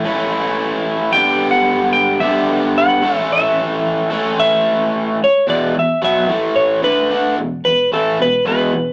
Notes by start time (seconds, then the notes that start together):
Already playing: E5
0.04 A2 E3 A3 C#4 E4
1.12 G2 D3 G3 B3 D4 G4 G5
1.51 F#5
1.93 G5
2.20 G2 D3 G3 B3 D4 G4 E5
2.78 F#5
3.02 A2 E3 A3 C#4 A4
3.32 E5
4.10 A2 E3 A3 C#4 A4
4.40 E5
5.24 C#5
5.47 E2 B2 E3 D5
5.75 E2 B2
5.79 E5
6.02 B2 F#3 B3 E5
6.28 A2 E3 A3
6.56 C#5
6.83 D3 A3 D4 B4
7.11 D3 A3 D4
7.38 E2 B2
7.65 E2 B2 B4
7.92 A2 E3 A3 A4
8.19 E2 B2 B4
8.45 E2 B2 E3 B4
8.72 E2 B2